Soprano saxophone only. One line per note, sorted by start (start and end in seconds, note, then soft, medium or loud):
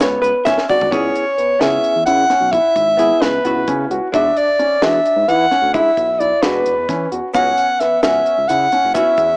0.70 0.94 D5 medium
0.92 1.62 C#5 medium
1.61 2.05 E5 medium
2.06 2.54 F#5 medium
2.52 3.23 E5 medium
3.21 3.90 B4 medium
4.15 4.39 E5 medium
4.37 4.85 D5 loud
4.83 5.30 E5 medium
5.29 5.73 F#5 medium
5.74 6.21 E5 medium
6.20 6.44 D5 medium
6.42 7.11 B4 medium
7.35 7.82 F#5 medium
7.80 8.02 E5 medium
8.03 8.50 E5 medium
8.48 8.94 F#5 medium
8.94 9.37 E5 loud